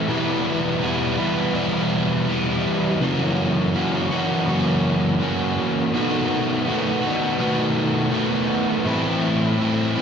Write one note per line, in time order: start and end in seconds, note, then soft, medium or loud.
0.00 0.10 E4 medium
0.08 1.18 E2 medium
0.08 1.18 B2 loud
0.08 0.81 E3 loud
0.08 0.81 G3 loud
0.08 0.82 B3 loud
0.08 0.84 E4 loud
0.81 1.20 E3 medium
0.81 1.18 G3 medium
0.81 1.17 B3 medium
0.81 1.17 E4 medium
1.18 1.55 E3 medium
1.18 1.54 G3 medium
1.18 1.55 B3 medium
1.18 1.56 E4 medium
1.53 2.64 E2 medium
1.53 2.64 B2 medium
1.53 2.27 E3 loud
1.53 2.27 G3 loud
1.53 2.28 B3 loud
1.53 2.30 E4 loud
2.28 3.01 E3 medium
2.28 2.99 G3 medium
2.28 2.99 B3 medium
2.28 3.03 E4 medium
3.00 4.10 F#2 medium
3.00 4.11 C#3 loud
3.00 3.73 E3 loud
3.00 3.74 A#3 loud
3.00 3.75 C#4 loud
3.00 3.76 F#4 loud
3.73 4.13 E3 medium
3.73 4.12 A#3 medium
3.73 4.11 C#4 medium
3.73 4.11 F#4 medium
4.11 4.47 E3 medium
4.11 4.47 A#3 medium
4.11 4.48 C#4 medium
4.11 4.48 F#4 medium
4.47 5.57 F#2 loud
4.47 5.57 C#3 loud
4.47 5.19 E3 loud
4.47 5.20 A#3 loud
4.47 5.21 C#4 loud
4.47 5.22 F#4 loud
5.20 5.94 E3 medium
5.20 5.92 A#3 medium
5.20 5.92 C#4 medium
5.20 5.92 F#4 medium
5.93 7.03 B2 loud
5.93 6.65 D#3 loud
5.93 6.67 A3 loud
5.93 6.67 B3 loud
5.93 6.68 F#4 loud
6.66 7.38 D#3 medium
6.66 7.05 A3 medium
6.66 7.03 B3 medium
6.66 7.01 F#4 medium
7.02 7.39 A3 medium
7.02 7.39 B3 medium
7.02 7.41 F#4 medium
7.38 8.49 B2 medium
7.38 8.09 D#3 loud
7.38 8.11 A3 loud
7.38 8.12 B3 medium
7.38 8.13 F#4 loud
8.11 8.83 D#3 medium
8.11 8.83 A3 medium
8.11 8.84 B3 medium
8.11 8.84 F#4 medium
8.85 9.95 A2 medium
8.85 9.57 E3 loud
8.85 9.59 A3 loud
8.85 9.59 C4 loud
8.85 9.60 E4 loud
9.58 10.02 E3 medium
9.58 9.97 A3 medium
9.58 9.96 C4 medium
9.58 9.94 E4 medium
9.95 10.02 A3 medium
9.95 10.02 C4 medium
9.95 10.02 E4 medium